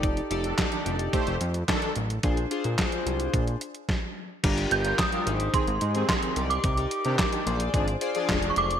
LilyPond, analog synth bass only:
\new Staff \with { instrumentName = "Analog synth bass" } { \clef bass \time 4/4 \key bes \major \tempo 4 = 109 f,,8 f,,8 r8 f,,8 r16 f,,16 f,8 r8 a,,8 | bes,,8 r16 bes,16 r8 c,8 bes,,8 r4. | \key c \minor g,,8 g,,8 r8 aes,,8 r16 aes,,16 aes,8 r8 c,8 | c,8 r16 c16 r8 bes,,8 aes,,8 r8 f,,8 f,,8 | }